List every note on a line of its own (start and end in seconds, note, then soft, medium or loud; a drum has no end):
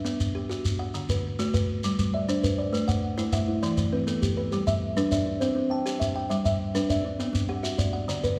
0.00 0.20 E5 medium
0.05 0.34 B3 medium
0.05 shekere medium
0.20 shekere medium
0.35 0.79 G4 medium
0.49 0.79 F#4 medium
0.49 shekere medium
0.65 shekere medium
0.79 1.09 F#5 medium
0.94 1.24 D3 medium
0.94 shekere medium
1.09 1.53 B4 medium
1.09 shekere medium
1.39 1.69 A3 medium
1.39 1.84 F#4 medium
1.39 shekere medium
1.54 1.98 B4 medium
1.54 shekere medium
1.84 2.14 G3 medium
1.84 shekere medium
1.99 2.28 G3 medium
1.99 shekere medium
2.14 2.58 D5 medium
2.14 2.58 E5 medium
2.28 2.58 D4 medium
2.28 2.73 C5 medium
2.28 shekere medium
2.43 2.72 B4 medium
2.43 shekere medium
2.58 2.88 D5 medium
2.73 3.03 A3 medium
2.73 2.88 B4 medium
2.73 shekere medium
2.88 3.32 F#5 medium
2.88 3.33 F#5 medium
2.88 shekere medium
3.18 3.48 A3 medium
3.18 3.47 E4 medium
3.18 3.62 C5 medium
3.18 shekere medium
3.32 3.77 E5 medium
3.32 3.77 F#5 medium
3.32 shekere medium
3.48 3.77 E4 medium
3.62 3.92 E3 medium
3.62 3.92 D5 medium
3.62 shekere medium
3.77 4.07 E3 medium
3.77 shekere medium
3.92 4.37 C4 medium
3.92 4.37 B4 medium
4.07 4.37 B3 medium
4.07 4.52 A4 medium
4.07 shekere medium
4.22 4.50 G4 medium
4.22 shekere medium
4.37 4.67 B4 medium
4.52 4.82 G3 medium
4.52 4.66 G4 medium
4.52 shekere medium
4.67 5.11 E5 medium
4.67 5.12 E5 medium
4.67 shekere medium
4.96 5.26 G3 medium
4.96 5.26 D4 medium
4.96 5.41 B4 medium
4.96 shekere medium
5.11 5.56 D5 medium
5.11 5.56 E5 medium
5.11 shekere medium
5.26 5.56 D4 medium
5.40 5.71 C4 medium
5.40 5.70 C5 medium
5.40 shekere medium
5.55 5.85 C4 loud
5.70 6.15 G5 medium
5.70 6.16 A5 medium
5.86 6.15 G4 medium
5.86 shekere medium
6.00 6.28 E5 medium
6.00 shekere medium
6.16 6.45 G5 medium
6.29 6.60 G3 medium
6.29 6.43 E5 medium
6.29 shekere medium
6.44 6.89 E5 medium
6.44 shekere medium
6.74 7.04 G3 medium
6.74 7.05 D4 medium
6.74 7.19 B4 medium
6.74 shekere medium
6.89 7.34 D5 medium
6.89 7.35 E5 medium
6.89 shekere medium
7.04 7.34 D4 medium
7.19 7.49 B3 medium
7.19 7.49 C4 medium
7.19 shekere medium
7.33 7.63 B3 loud
7.33 shekere medium
7.49 7.94 G4 medium
7.49 7.93 F#5 medium
7.63 7.93 F#4 medium
7.63 8.08 E5 medium
7.63 shekere medium
7.78 8.08 D5 medium
7.78 shekere medium
7.93 8.23 F#5 medium
8.08 8.38 D3 medium
8.08 8.23 D5 medium
8.08 shekere medium
8.23 8.39 B4 medium
8.23 shekere medium